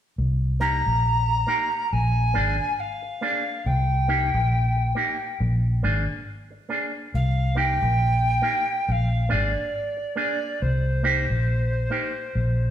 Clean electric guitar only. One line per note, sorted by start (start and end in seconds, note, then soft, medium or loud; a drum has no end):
0.60 0.81 A#3 medium
0.60 0.82 D#4 medium
0.60 0.82 G4 medium
1.29 muted clean electric guitar stroke medium
1.47 1.68 A#3 medium
1.47 1.69 D#4 medium
1.47 1.69 G4 medium
2.34 2.55 A#3 medium
2.34 2.56 D4 medium
2.34 2.56 G#4 medium
3.02 muted clean electric guitar stroke soft
3.21 3.42 A#3 medium
3.21 3.43 D4 medium
3.21 3.43 G#4 medium
4.08 4.29 A#3 medium
4.08 4.30 D#4 medium
4.08 4.30 G4 medium
4.76 muted clean electric guitar stroke medium
4.95 5.16 A#3 medium
4.95 5.17 D#4 medium
4.95 5.17 G4 medium
5.83 6.04 A#3 medium
5.83 6.04 D4 medium
5.83 6.05 G#4 medium
6.51 muted clean electric guitar stroke soft
6.69 6.90 A#3 medium
6.69 6.91 D4 medium
6.69 6.91 G#4 medium
7.55 7.77 A#3 medium
7.55 7.78 D#4 medium
7.55 7.78 G4 medium
8.23 muted clean electric guitar stroke soft
8.42 8.64 A#3 medium
8.42 8.64 D#4 medium
8.42 8.64 G4 medium
9.29 9.51 A#3 medium
9.29 9.51 D4 medium
9.29 9.51 G#4 medium
9.97 muted clean electric guitar stroke soft
10.16 10.38 A#3 medium
10.16 10.38 D4 medium
10.16 10.38 G#4 medium
11.03 11.25 A#3 medium
11.03 11.25 D#4 medium
11.03 11.26 G4 medium
11.71 muted clean electric guitar stroke soft
11.90 12.12 A#3 medium
11.90 12.12 D#4 medium
11.90 12.13 G4 medium